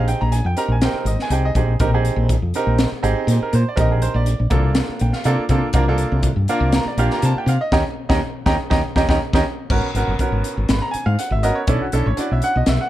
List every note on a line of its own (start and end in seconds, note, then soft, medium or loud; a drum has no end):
0.00 0.12 A#1 medium
0.00 0.31 C4 medium
0.00 0.31 D#4 medium
0.00 0.31 G4 medium
0.00 0.31 G#4 medium
0.08 0.20 G5 medium
0.08 closed hi-hat medium
0.21 0.40 A#1 medium
0.21 0.32 A#5 medium
0.32 0.44 G#5 medium
0.32 closed hi-hat medium
0.45 0.54 F2 medium
0.45 0.57 G5 medium
0.56 0.73 C4 medium
0.56 0.73 D#4 medium
0.56 0.73 G4 medium
0.56 0.74 A#4 medium
0.56 0.70 A#5 loud
0.56 closed hi-hat medium
0.68 0.88 A#1 medium
0.68 0.82 G#5 medium
0.81 1.14 C4 medium
0.81 1.14 D#4 medium
0.81 1.14 G4 medium
0.81 0.96 A#4 medium
0.81 0.96 G5 medium
0.81 snare loud
0.81 closed hi-hat medium
0.93 muted fretless electric bass stroke soft
0.98 1.08 A#4 medium
1.05 1.15 G#1 medium
1.05 1.19 D#5 medium
1.05 closed hi-hat medium
1.19 1.32 G#5 medium
1.19 snare soft
1.30 1.52 C2 medium
1.30 1.47 C4 medium
1.30 1.47 D#4 medium
1.30 1.48 G4 medium
1.30 1.48 G#4 medium
1.30 1.44 G5 medium
1.30 closed hi-hat medium
1.45 1.52 D#5 medium
1.55 1.77 A#1 medium
1.55 1.72 C4 medium
1.55 1.72 D#4 medium
1.55 1.72 G4 medium
1.55 1.73 G#4 medium
1.55 kick medium
1.55 closed hi-hat medium
1.80 2.09 A#1 medium
1.80 1.89 C4 medium
1.80 1.88 D#4 medium
1.80 1.89 G4 medium
1.80 1.89 A#4 loud
1.80 kick loud
1.80 closed hi-hat medium
1.93 2.33 C4 medium
1.93 2.34 D#4 medium
1.93 2.34 G4 medium
1.93 2.34 G#4 medium
2.05 closed hi-hat medium
2.16 2.36 A#1 medium
2.29 kick medium
2.29 closed hi-hat medium
2.42 2.51 F2 medium
2.54 2.88 C4 medium
2.54 2.87 D#4 medium
2.54 2.88 G4 medium
2.54 2.88 A#4 loud
2.54 closed hi-hat medium
2.66 2.86 A#1 medium
2.78 snare loud
2.78 closed hi-hat medium
2.92 muted fretless electric bass stroke soft
3.03 3.13 G#1 medium
3.03 3.52 C4 medium
3.03 3.52 D#4 loud
3.03 3.52 G4 medium
3.03 3.52 G#4 loud
3.03 closed hi-hat medium
3.27 3.37 A#2 medium
3.27 closed hi-hat medium
3.41 3.53 A#4 medium
3.41 muted fretless electric bass stroke soft
3.53 3.63 A#2 medium
3.53 3.66 C5 medium
3.53 closed hi-hat medium
3.69 3.79 D5 medium
3.76 4.06 A#1 medium
3.76 4.25 C4 medium
3.76 4.25 D#4 medium
3.76 4.26 G4 medium
3.76 4.26 A#4 medium
3.76 kick loud
3.76 closed hi-hat medium
3.81 3.92 D#5 medium
3.92 4.03 G#4 medium
4.02 4.15 C5 medium
4.02 closed hi-hat medium
4.14 4.33 A#1 medium
4.14 4.85 D5 medium
4.26 closed hi-hat medium
4.39 4.49 A#1 medium
4.50 4.80 C2 loud
4.50 5.10 A#3 medium
4.50 5.11 D4 medium
4.50 5.11 F4 medium
4.50 5.11 A4 medium
4.50 kick medium
4.50 closed hi-hat medium
4.75 snare loud
4.75 closed hi-hat medium
4.89 muted fretless electric bass stroke soft
4.99 5.11 A#1 medium
4.99 5.13 G5 medium
4.99 closed hi-hat medium
5.13 5.25 F5 medium
5.13 snare soft
5.24 5.35 C3 medium
5.24 5.42 A#3 medium
5.24 5.42 D4 medium
5.24 5.43 F4 medium
5.24 5.42 A4 loud
5.24 5.72 D5 medium
5.24 closed hi-hat medium
5.39 muted fretless electric bass stroke soft
5.49 5.59 C3 medium
5.49 5.67 A#3 medium
5.49 5.67 D4 medium
5.49 5.67 F4 medium
5.49 5.67 A4 medium
5.49 kick medium
5.49 closed hi-hat medium
5.73 6.03 C2 medium
5.73 5.83 A#3 medium
5.73 5.83 D4 medium
5.73 5.83 F4 medium
5.73 5.84 A#4 loud
5.73 kick loud
5.73 closed hi-hat medium
5.88 6.28 A#3 medium
5.88 6.28 D4 medium
5.88 6.28 F4 medium
5.88 6.29 A4 medium
5.98 closed hi-hat medium
6.12 6.31 C2 medium
6.23 kick medium
6.23 closed hi-hat medium
6.36 6.46 G2 medium
6.48 6.82 A#3 loud
6.48 6.82 D4 medium
6.48 6.82 F4 medium
6.48 6.82 A#4 loud
6.48 closed hi-hat medium
6.60 6.80 C2 medium
6.72 6.87 A#5 medium
6.72 snare loud
6.72 closed hi-hat medium
6.85 6.99 D5 medium
6.85 muted fretless electric bass stroke soft
6.97 7.07 A#1 medium
6.97 7.47 A#3 medium
6.97 7.47 D4 medium
6.97 7.47 F4 medium
6.97 7.48 G4 medium
6.97 7.11 F5 loud
6.97 closed hi-hat medium
7.11 7.23 A#5 medium
7.11 snare soft
7.22 7.32 C3 loud
7.22 7.36 A5 medium
7.22 closed hi-hat medium
7.35 7.49 G5 medium
7.35 muted fretless electric bass stroke soft
7.46 7.57 C3 loud
7.46 7.61 F5 medium
7.46 closed hi-hat medium
7.61 7.71 D#5 medium
7.72 7.82 D#2 loud
7.72 7.81 C#4 loud
7.72 7.81 D#4 medium
7.72 7.81 G4 loud
7.72 7.81 D#5 medium
7.72 7.81 G5 medium
7.72 7.81 A#5 medium
7.72 kick loud
7.72 snare loud
8.09 8.19 D#2 loud
8.09 8.17 C#4 loud
8.09 8.17 D#4 loud
8.09 8.17 G4 loud
8.09 8.17 D#5 loud
8.09 8.17 G5 loud
8.09 8.17 A#5 loud
8.09 kick medium
8.09 snare medium
8.46 8.56 D#2 loud
8.46 8.55 C#4 medium
8.46 8.54 D#4 loud
8.46 8.54 G4 loud
8.46 8.55 D#5 loud
8.46 8.54 G5 loud
8.46 8.55 A#5 loud
8.46 kick medium
8.46 snare medium
8.70 8.81 D#2 medium
8.70 8.79 C#4 medium
8.70 8.79 D#4 loud
8.70 8.79 G4 medium
8.70 8.79 D#5 loud
8.70 8.80 G5 loud
8.70 8.80 A#5 loud
8.70 kick loud
8.70 snare medium
8.96 9.05 D#2 medium
8.96 9.05 C#4 loud
8.96 9.04 D#4 loud
8.96 9.04 G4 loud
8.96 9.05 D#5 medium
8.96 9.04 G5 loud
8.96 9.04 A#5 medium
8.96 kick medium
8.96 snare medium
9.09 9.17 D#2 loud
9.09 9.17 C#4 medium
9.09 9.17 D#4 medium
9.09 9.17 G4 medium
9.09 9.17 D#5 loud
9.09 9.17 G5 medium
9.09 9.17 A#5 loud
9.09 kick medium
9.09 snare medium
9.33 9.42 D#2 medium
9.33 9.42 C#4 loud
9.33 9.42 D#4 loud
9.33 9.42 G4 loud
9.33 9.41 D#5 loud
9.33 9.42 G5 medium
9.33 9.42 A#5 medium
9.33 kick medium
9.33 snare medium
9.70 9.80 G#1 medium
9.70 9.86 B3 medium
9.70 9.87 C#4 medium
9.70 9.87 F#4 medium
9.70 9.87 A#4 loud
9.70 kick loud
9.70 crash loud
9.94 10.04 G#1 medium
9.94 10.12 B3 medium
9.94 10.12 C#4 medium
9.94 10.12 F#4 medium
9.94 10.12 A#4 medium
9.94 closed hi-hat medium
10.07 10.16 F#1 medium
10.19 10.85 B3 medium
10.19 10.85 C#4 medium
10.19 10.85 F#4 medium
10.19 10.85 A#4 medium
10.19 kick medium
10.19 closed hi-hat medium
10.32 10.41 G#1 medium
10.44 closed hi-hat medium
10.57 10.66 G#1 medium
10.69 10.79 G#1 medium
10.69 10.82 B5 medium
10.69 snare loud
10.69 closed hi-hat medium
10.82 10.93 A#5 medium
10.91 11.05 G#5 medium
10.91 muted fretless electric bass stroke soft
10.91 closed hi-hat medium
11.06 11.15 G#2 loud
11.06 11.18 F5 medium
11.19 11.31 F#5 medium
11.19 closed hi-hat medium
11.31 11.50 G#1 medium
11.31 11.43 E5 medium
11.43 11.60 B3 medium
11.43 11.60 C#4 medium
11.43 11.60 F#4 medium
11.43 11.60 A#4 medium
11.43 11.55 D#5 loud
11.43 closed hi-hat medium
11.55 11.67 C#5 medium
11.67 11.77 B1 medium
11.67 11.84 C#4 medium
11.67 11.84 D4 medium
11.67 11.85 E4 medium
11.67 11.85 A4 medium
11.67 11.81 D5 medium
11.67 kick loud
11.67 closed hi-hat medium
11.81 11.92 F#4 medium
11.92 12.02 B1 medium
11.92 12.10 C#4 medium
11.92 12.10 D4 medium
11.92 12.10 E4 medium
11.92 12.05 A4 loud
11.92 closed hi-hat medium
12.06 12.15 A1 medium
12.06 12.17 C#5 medium
12.17 12.82 C#4 medium
12.17 12.82 D4 medium
12.17 12.83 E4 medium
12.17 12.83 F#4 medium
12.17 12.31 D5 medium
12.17 muted fretless electric bass stroke soft
12.17 closed hi-hat medium
12.31 12.40 B1 medium
12.31 12.43 E5 medium
12.42 12.55 F#5 loud
12.42 closed hi-hat medium
12.56 12.64 B1 medium
12.56 12.67 D#5 medium
12.66 12.76 B1 medium
12.66 12.80 E5 medium
12.66 snare loud
12.66 closed hi-hat medium
12.81 12.89 F#5 medium